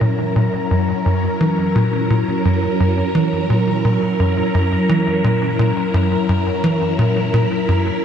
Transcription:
0.00 8.05 F#2 medium
0.00 0.34 A#2 medium
0.00 8.05 F#3 medium
0.00 8.05 C#4 medium
0.00 8.05 E4 medium
0.00 8.05 A#4 medium
0.00 8.05 A#5 medium
0.36 0.49 A#2 medium
0.71 0.93 F#2 medium
1.06 1.28 F#2 medium
1.41 1.74 E3 medium
1.76 2.09 A#2 medium
2.10 2.24 A#2 medium
2.45 2.67 F#2 medium
2.80 3.02 F#2 medium
3.15 3.48 E3 medium
3.50 3.83 A#2 medium
3.85 3.98 A#2 medium
4.20 4.42 F#2 medium
4.54 4.77 F#2 medium
4.89 5.23 E3 medium
5.24 5.57 A#2 medium
5.59 5.73 A#2 medium
5.94 6.16 F#2 medium
6.29 6.51 F#2 medium
6.64 6.97 E3 medium
6.99 7.32 A#2 medium
7.34 7.47 A#2 medium
7.68 7.91 F#2 medium

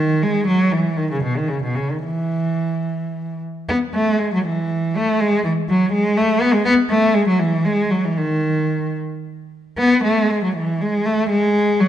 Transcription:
0.00 0.24 D#3 medium
0.23 0.48 G#3 medium
0.47 0.72 F#3 medium
0.72 0.98 E3 medium
0.97 1.10 D#3 medium
1.11 1.24 C#3 medium
1.23 1.36 B2 medium
1.37 1.50 D#3 medium
1.49 1.62 C#3 medium
1.63 1.76 B2 medium
1.76 1.90 C#3 medium
1.91 2.04 D#3 medium
2.04 3.39 E3 medium
3.69 3.77 B3 medium
3.94 4.19 A3 medium
4.19 4.32 G#3 medium
4.34 4.46 F#3 medium
4.45 4.95 E3 medium
4.97 5.21 A3 medium
5.21 5.45 G#3 medium
5.44 5.52 E3 medium
5.69 5.93 F#3 medium
5.93 6.16 G#3 medium
6.18 6.41 A3 medium
6.42 6.53 B3 medium
6.53 6.65 G#3 medium
6.65 6.73 B3 loud
6.90 7.14 A3 medium
7.15 7.27 G#3 medium
7.28 7.40 F#3 medium
7.39 7.65 E3 medium
7.66 7.92 G#3 medium
7.91 8.04 F#3 medium
8.05 8.18 E3 medium
8.18 8.97 D#3 medium
9.78 10.02 B3 medium
10.04 10.29 A3 medium
10.30 10.42 G#3 medium
10.44 10.55 F#3 medium
10.56 10.80 E3 medium
10.81 11.05 G#3 medium
11.06 11.30 A3 medium
11.30 11.78 G#3 medium
11.80 11.88 F#3 medium

